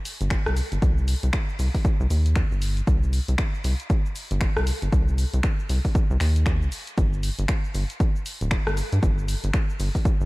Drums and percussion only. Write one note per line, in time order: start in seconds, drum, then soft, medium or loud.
0.05 open hi-hat loud
0.05 cabasa medium
0.21 closed hi-hat medium
0.21 cabasa soft
0.30 finger snap loud
0.30 kick loud
0.30 closed hi-hat medium
0.30 cabasa soft
0.46 cross-stick medium
0.46 cabasa soft
0.57 open hi-hat loud
0.57 cabasa medium
0.72 closed hi-hat medium
0.72 cabasa soft
0.82 kick loud
0.82 closed hi-hat medium
0.82 cabasa soft
0.98 cabasa soft
1.08 open hi-hat loud
1.08 cabasa medium
1.23 closed hi-hat medium
1.23 cabasa soft
1.33 finger snap loud
1.33 kick loud
1.33 closed hi-hat medium
1.33 cabasa soft
1.49 cabasa soft
1.59 open hi-hat loud
1.59 cabasa medium
1.75 kick medium
1.75 open hi-hat medium
1.75 cabasa soft
1.85 kick loud
1.85 closed hi-hat medium
1.85 cabasa soft
2.00 cabasa soft
2.10 open hi-hat loud
2.10 cabasa medium
2.26 closed hi-hat medium
2.26 cabasa soft
2.36 finger snap loud
2.36 kick loud
2.36 closed hi-hat medium
2.36 cabasa soft
2.52 cabasa soft
2.62 open hi-hat loud
2.62 cabasa medium
2.77 closed hi-hat medium
2.77 cabasa soft
2.87 kick loud
2.87 closed hi-hat medium
2.87 cabasa soft
3.03 cabasa soft
3.13 open hi-hat loud
3.13 cabasa medium
3.28 closed hi-hat medium
3.28 cabasa soft
3.38 finger snap loud
3.38 kick loud
3.38 closed hi-hat medium
3.38 cabasa soft
3.54 cabasa soft
3.64 open hi-hat loud
3.64 cabasa medium
3.80 closed hi-hat medium
3.80 cabasa soft
3.90 kick loud
3.90 closed hi-hat medium
3.90 cabasa soft
4.06 cabasa soft
4.16 open hi-hat loud
4.16 cabasa medium
4.31 closed hi-hat medium
4.31 cabasa soft
4.41 finger snap loud
4.41 kick loud
4.41 closed hi-hat medium
4.41 cabasa soft
4.57 cross-stick medium
4.57 cabasa soft
4.67 open hi-hat loud
4.67 cabasa medium
4.82 closed hi-hat medium
4.82 cabasa soft
4.92 kick loud
4.92 closed hi-hat medium
4.92 cabasa soft
5.08 cabasa soft
5.18 open hi-hat loud
5.18 cabasa medium
5.34 closed hi-hat medium
5.34 cabasa soft
5.43 finger snap loud
5.43 kick loud
5.43 closed hi-hat medium
5.43 cabasa soft
5.59 cabasa soft
5.69 open hi-hat loud
5.69 cabasa medium
5.85 kick medium
5.85 open hi-hat medium
5.85 cabasa soft
5.95 kick loud
5.95 closed hi-hat medium
5.95 cabasa soft
6.11 cabasa soft
6.20 finger snap medium
6.20 open hi-hat loud
6.20 cabasa medium
6.36 closed hi-hat medium
6.36 cabasa soft
6.46 finger snap loud
6.46 kick loud
6.46 closed hi-hat medium
6.46 cabasa soft
6.62 cabasa soft
6.72 open hi-hat loud
6.72 cabasa medium
6.87 closed hi-hat medium
6.87 cabasa soft
6.98 kick loud
6.98 closed hi-hat medium
6.98 cabasa soft
7.13 cabasa soft
7.23 open hi-hat loud
7.23 cabasa medium
7.39 closed hi-hat medium
7.39 cabasa soft
7.48 finger snap loud
7.48 kick loud
7.48 closed hi-hat medium
7.48 cabasa soft
7.64 cabasa soft
7.75 open hi-hat loud
7.75 cabasa medium
7.90 closed hi-hat medium
7.90 cabasa soft
8.00 kick loud
8.00 closed hi-hat medium
8.00 cabasa soft
8.16 cabasa soft
8.26 open hi-hat loud
8.26 cabasa medium
8.41 closed hi-hat medium
8.41 cabasa soft
8.51 finger snap loud
8.51 kick loud
8.51 closed hi-hat medium
8.51 cabasa soft
8.67 cross-stick medium
8.67 cabasa soft
8.77 open hi-hat loud
8.77 cabasa medium
8.93 closed hi-hat medium
8.93 cabasa soft
9.03 kick loud
9.03 closed hi-hat medium
9.03 cabasa soft
9.18 cabasa soft
9.28 open hi-hat loud
9.28 cabasa medium
9.44 closed hi-hat medium
9.44 cabasa soft
9.53 finger snap loud
9.53 kick loud
9.53 closed hi-hat medium
9.53 cabasa soft
9.70 cabasa soft
9.80 open hi-hat loud
9.80 cabasa medium
9.95 kick medium
9.95 open hi-hat medium
9.95 cabasa soft
10.05 kick loud
10.05 closed hi-hat medium
10.05 cabasa soft
10.21 cabasa soft